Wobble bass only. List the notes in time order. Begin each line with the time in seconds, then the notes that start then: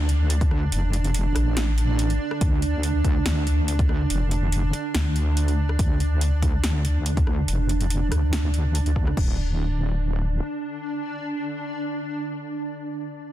Already playing: D2
0.72 F1
1.36 A1
2.41 D2
3.26 D2
4.10 F1
4.95 D2
5.79 D2
6.64 D2
7.48 F1
8.12 D2
8.96 D2
9.17 D1